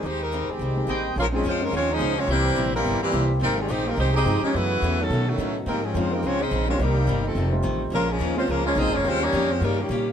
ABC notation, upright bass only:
X:1
M:4/4
L:1/8
Q:"Swing" 1/4=213
K:Bbdor
V:1 name="Upright bass" clef=bass
E,,3 z C,,2 =A,,,2 | B,,,2 F,,2 E,,2 D,,2 | C,,2 B,,,2 G,,, z C,,2 | A,,,2 B,,,2 C,,2 G,, z |
_G,,2 _F,,2 =B,,2 =A,,2 | A,,2 F,,2 D,,2 B,,,2 | C,,2 G,,,2 F,,,2 =A,,,2 | B,,,2 E,,2 D,,2 (3B,,, A,,, F,,, |
E,,2 F,,2 G,,2 B,,2 |]